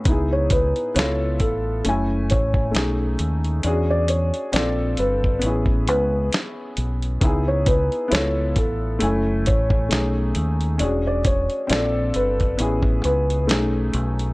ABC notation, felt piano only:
X:1
M:4/4
L:1/16
Q:"Swing 16ths" 1/4=67
K:C#m
V:1 name="Felt piano"
z c B2 c2 A4 c3 z3 | z =d c2 d2 B4 B2 z4 | z c B2 c2 A4 c3 z3 | z =d c2 d2 B4 B2 z4 |]